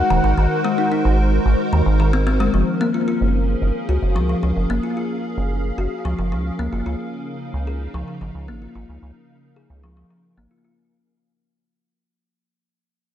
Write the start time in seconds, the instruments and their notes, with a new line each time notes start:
Already playing: analog synth pad G#3 D#4 F#4 A#4 C5, soft synth lead F#5
0.10 acid bass D#1, kalimba D#3
0.24 acid bass G#1, kalimba D#3
0.38 acid bass G#1, kalimba D#3
0.65 kalimba G#3
0.78 kalimba D#4
0.92 kalimba D#4
1.05 acid bass G#1
1.46 acid bass G#1
1.73 acid bass D#2, kalimba D#3
1.86 acid bass G#1
2.00 kalimba D#3
2.13 kalimba C4
2.27 kalimba C4
2.40 acid bass F#1, kalimba G#3
2.54 acid bass F#1, kalimba F3
2.58 analog synth pad C#4
2.81 kalimba A#3
2.94 kalimba F4
3.02 analog synth pad G#4 F5
3.08 kalimba F4
3.21 acid bass F#1
3.62 acid bass F#1
3.89 acid bass C#2, kalimba F#4
4.02 acid bass F#1
4.16 acid bass C#2, kalimba F3
4.29 kalimba F3
4.43 acid bass C#2, kalimba F3
4.57 acid bass F#1
4.70 acid bass F#1, kalimba A#3
4.83 kalimba F4
4.97 kalimba F4
5.38 acid bass F#1
5.78 acid bass F#1, kalimba F#4
6.05 acid bass C#2, kalimba F3
6.19 acid bass F#1, kalimba F3
6.32 acid bass C#2, kalimba F3
6.59 acid bass C#2, kalimba A#3
6.73 acid bass F#1, kalimba F4
6.86 acid bass C#2, analog synth pad C#3, kalimba F4
7.10 analog synth pad D#4
7.54 acid bass C#2
7.67 kalimba G#4
7.94 acid bass C#2, kalimba F3
8.08 kalimba F3
8.21 acid bass G#1, kalimba F3
8.35 acid bass C#2
8.48 acid bass G#1, kalimba A#3
8.62 kalimba F4
8.75 acid bass G#1, kalimba F4
8.89 acid bass C#2
9.03 acid bass C#2
9.56 kalimba G#4
9.70 acid bass C#2
9.83 kalimba F3
9.97 kalimba F3
10.10 kalimba F3
10.37 acid bass G#1, kalimba A#3
10.51 kalimba F4
10.64 kalimba F4